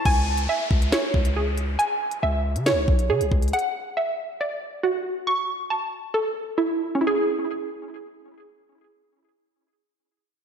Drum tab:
CC |x-------------------------------|--------------------------------|--------------------------------|--------------------------------|
HH |x-----x-------x-x-----x-----x---|x-----x-------x-x-----x---x---xx|xx------------------------------|--------------------------------|
SD |----------------o---------------|----------------o---------------|--------------------------------|--------------------------------|
BD |o-----------o-------o-----------|--------------------o-------o---|--------------------------------|--------------------------------|

CC |--------------------------------|--------------------------------|
HH |--------------------------------|--------------------------------|
SD |--------------------------------|--------------------------------|
BD |--------------------------------|--------------------------------|